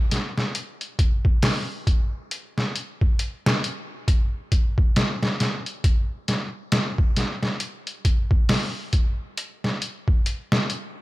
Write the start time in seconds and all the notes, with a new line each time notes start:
0.11 snare, closed hi-hat
0.38 snare
0.55 closed hi-hat
0.81 closed hi-hat
0.99 kick, closed hi-hat
1.25 kick
1.42 snare, open hi-hat
1.87 kick, closed hi-hat
2.31 closed hi-hat
2.58 snare
2.76 closed hi-hat
3.01 kick
3.19 closed hi-hat
3.46 snare
3.64 closed hi-hat
4.08 kick, closed hi-hat
4.52 kick, closed hi-hat
4.78 kick
4.96 snare, closed hi-hat
5.23 snare
5.40 snare, closed hi-hat
5.66 closed hi-hat
5.84 kick, closed hi-hat
6.28 snare, closed hi-hat
6.72 snare, closed hi-hat
6.98 kick
7.16 snare, closed hi-hat
7.43 snare
7.60 closed hi-hat
7.87 closed hi-hat
8.05 kick, closed hi-hat
8.31 kick
8.49 snare, open hi-hat
8.93 kick, closed hi-hat
9.38 closed hi-hat
9.64 snare
9.82 closed hi-hat
10.08 kick
10.26 closed hi-hat
10.52 snare
10.70 closed hi-hat